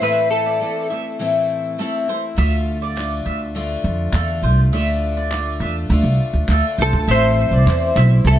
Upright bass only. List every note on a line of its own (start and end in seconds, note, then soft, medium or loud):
2.38 3.22 D2 loud
3.26 3.74 D2 medium
3.84 4.08 F2 medium
4.13 4.44 E2 medium
4.42 4.72 C2 medium
4.72 5.57 D2 loud
5.60 5.85 E2 medium
5.90 6.02 D2 loud
6.04 6.16 C2 medium
6.34 6.46 D2 medium
6.48 6.61 D2 medium
6.78 6.91 C2 medium
6.93 7.05 D2 medium
7.08 7.44 A1 medium
7.51 7.64 C2 medium
7.66 7.91 E2 medium
7.96 8.20 B1 medium
8.25 8.39 C2 medium